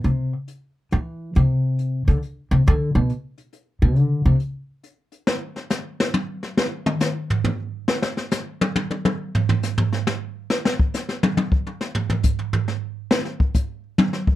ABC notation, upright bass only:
X:1
M:3/4
L:1/8
Q:"Swing" 1/4=138
K:Clyd
V:1 name="Upright bass" clef=bass
C, z3 E,2 | C,3 D, z C, | D, B,, z3 B,, | D, C, z4 |
[K:Eb] z6 | z6 | z6 | z6 |
z6 | z6 | z6 |]